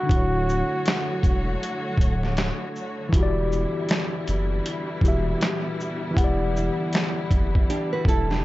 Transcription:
0.00 8.45 D3 medium
0.00 3.06 D3 medium
0.00 2.00 F#4 loud
0.00 0.10 E5 medium
0.06 0.62 D1 loud
0.06 3.10 F#3 medium
0.06 3.10 A3 medium
0.06 3.08 D4 medium
0.06 3.09 E4 medium
0.06 3.10 F#4 medium
0.06 3.10 C#5 medium
0.06 kick loud
0.11 3.11 F#4 medium
0.11 closed hi-hat medium
0.17 3.13 C#5 medium
0.49 shaker soft
0.86 snare loud
0.86 closed hi-hat medium
1.23 1.57 E1 medium
1.23 kick medium
1.23 closed hi-hat soft
1.23 shaker soft
1.63 closed hi-hat medium
1.98 2.51 D1 loud
1.98 kick medium
1.98 closed hi-hat soft
1.98 shaker soft
2.23 snare soft
2.37 snare loud
2.37 closed hi-hat medium
2.76 shaker soft
3.09 3.66 E1 loud
3.09 4.97 E3 medium
3.09 8.45 E3 medium
3.09 8.45 G3 medium
3.09 8.45 B3 medium
3.09 4.99 E4 medium
3.09 8.45 E4 medium
3.09 kick loud
3.14 5.01 F#4 medium
3.14 closed hi-hat medium
3.19 5.02 G4 medium
3.19 5.04 D5 medium
3.52 shaker soft
3.89 snare loud
3.89 closed hi-hat medium
4.28 4.61 F#1 medium
4.28 closed hi-hat soft
4.28 shaker soft
4.66 closed hi-hat medium
5.01 5.35 E1 loud
5.01 6.09 E3 medium
5.01 6.13 E4 soft
5.01 6.18 F#4 soft
5.01 kick medium
5.01 closed hi-hat soft
5.01 shaker soft
5.06 6.19 G4 medium
5.06 6.20 E5 medium
5.41 snare loud
5.41 closed hi-hat medium
5.80 shaker soft
6.10 8.45 E3 medium
6.10 8.45 E4 medium
6.17 6.69 E1 loud
6.17 8.45 F#5 medium
6.17 kick loud
6.17 closed hi-hat medium
6.21 8.45 G4 medium
6.21 8.45 D5 medium
6.57 shaker medium
6.93 snare loud
6.93 closed hi-hat medium
7.31 7.64 F#1 medium
7.31 kick medium
7.31 closed hi-hat soft
7.31 shaker soft
7.55 kick medium
7.70 7.91 D4 medium
7.70 7.90 G4 medium
7.70 closed hi-hat medium
7.93 8.07 F#4 medium
7.93 8.07 B4 medium
8.05 8.45 E1 medium
8.05 8.29 E4 medium
8.05 8.29 A4 medium
8.05 kick medium
8.05 closed hi-hat soft
8.05 shaker soft
8.30 8.45 D4 medium
8.30 8.45 G4 medium
8.30 snare soft

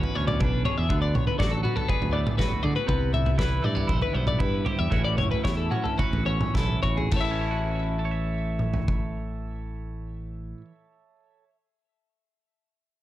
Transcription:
0.00 0.90 E2 medium
0.00 0.90 E3 medium
0.00 0.15 C#4 soft
0.00 0.39 D4 soft
0.00 0.65 F#4 soft
0.00 0.16 B4 medium
0.00 floor tom medium
0.16 0.39 D2 medium
0.16 0.87 B2 medium
0.16 0.88 C#4 medium
0.16 0.27 C#5 medium
0.28 0.41 D5 medium
0.28 floor tom medium
0.28 mid tom medium
0.40 0.63 B1 medium
0.40 0.87 D4 soft
0.40 0.65 B4 medium
0.40 kick medium
0.40 floor tom medium
0.40 mid tom medium
0.65 0.87 G#4 soft
0.65 0.78 C#5 medium
0.65 floor tom medium
0.78 0.89 E2 medium
0.78 1.01 E5 medium
0.89 1.13 D2 medium
0.89 2.85 D3 medium
0.89 1.64 B3 soft
0.89 kick medium
0.89 floor tom medium
1.02 1.15 D5 medium
1.14 1.26 B1 medium
1.14 1.27 C#5 medium
1.14 floor tom medium
1.14 mid tom medium
1.27 1.39 B4 medium
1.27 floor tom medium
1.39 1.63 A1 medium
1.39 2.86 F#3 medium
1.39 2.38 F#4 soft
1.39 1.52 D5 medium
1.39 kick medium
1.39 snare medium
1.51 1.63 A4 medium
1.63 2.12 B3 soft
1.63 1.76 F#4 medium
1.63 mid tom medium
1.76 1.88 A4 medium
1.76 floor tom medium
1.88 2.62 G#4 soft
1.88 2.14 B4 medium
1.88 kick medium
1.88 floor tom medium
2.02 2.25 D2 medium
2.02 floor tom medium
2.13 2.85 A2 medium
2.13 2.85 B3 soft
2.13 2.38 D5 medium
2.27 floor tom medium
2.27 mid tom medium
2.38 2.86 F#4 soft
2.38 2.63 B4 medium
2.38 kick medium
2.38 snare medium
2.38 floor tom medium
2.38 mid tom medium
2.52 floor tom medium
2.63 2.75 D3 medium
2.63 2.85 G#4 soft
2.63 2.76 D5 medium
2.63 floor tom medium
2.76 2.87 B4 medium
2.87 3.60 C2 medium
2.87 3.38 C3 medium
2.87 3.62 B3 soft
2.87 3.14 B4 medium
2.87 kick medium
2.87 floor tom medium
3.14 3.39 E5 medium
3.14 floor tom medium
3.14 mid tom medium
3.26 floor tom medium
3.38 4.90 E3 medium
3.38 3.87 E4 medium
3.38 3.64 B4 medium
3.38 kick medium
3.38 snare medium
3.62 3.91 G2 medium
3.62 3.75 A3 soft
3.62 3.90 D5 medium
3.62 mid tom medium
3.75 4.13 B3 soft
3.75 floor tom medium
3.87 4.01 B1 medium
3.87 4.39 E4 soft
3.87 4.02 C5 medium
3.87 kick medium
3.87 floor tom medium
4.02 4.15 B4 medium
4.02 floor tom medium
4.13 4.38 B1 medium
4.13 4.88 G2 medium
4.13 4.88 B3 soft
4.13 4.27 C5 medium
4.27 4.40 D5 medium
4.27 floor tom medium
4.27 mid tom medium
4.39 4.64 G2 medium
4.39 4.92 E4 soft
4.39 4.66 B4 medium
4.39 kick medium
4.39 floor tom medium
4.39 mid tom medium
4.65 4.88 G4 soft
4.65 4.79 C5 medium
4.65 floor tom medium
4.79 4.91 E2 medium
4.79 5.04 E5 medium
4.90 5.16 A1 medium
4.90 7.10 A2 medium
4.90 5.42 E3 soft
4.90 5.70 C#4 soft
4.90 5.43 E4 soft
4.90 5.98 F#4 medium
4.90 kick medium
4.90 floor tom medium
5.05 5.18 D5 medium
5.18 5.31 F#1 medium
5.18 5.31 C#5 medium
5.18 floor tom medium
5.18 mid tom medium
5.31 5.44 B4 medium
5.31 floor tom medium
5.43 5.69 E2 medium
5.43 7.20 E3 soft
5.43 6.53 E4 soft
5.43 5.57 C#5 medium
5.43 kick medium
5.43 snare medium
5.57 5.71 A4 medium
5.71 6.25 C#4 soft
5.71 5.85 F#4 medium
5.71 mid tom medium
5.84 5.98 A4 medium
5.84 floor tom medium
5.98 6.81 F#4 medium
5.98 6.26 B4 medium
5.98 kick medium
5.98 floor tom medium
6.13 6.38 A1 medium
6.13 floor tom medium
6.25 7.12 E2 medium
6.25 7.08 C#4 medium
6.25 6.55 C#5 medium
6.41 floor tom medium
6.41 mid tom medium
6.54 6.81 B1 medium
6.54 7.09 E4 soft
6.54 6.82 A4 medium
6.54 kick medium
6.54 snare soft
6.69 mid tom soft
6.83 7.10 A1 medium
6.83 7.09 F#4 soft
6.83 6.97 C#5 medium
6.83 kick medium
6.97 7.13 G#4 medium
6.97 floor tom medium
7.11 10.53 A1 medium
7.11 10.61 A2 soft
7.11 10.57 A4 medium
7.11 kick medium
7.11 crash medium
7.16 7.24 C#5 medium
7.16 10.61 E5 medium
7.21 10.71 E3 soft
7.21 10.65 A5 medium
7.31 7.99 C#4 soft
7.41 8.05 E4 soft
7.51 8.11 F#4 soft
7.99 11.44 A4 medium
8.05 11.50 C#5 medium
8.11 11.56 E5 medium
8.59 mid tom soft
8.74 floor tom medium
8.88 kick medium

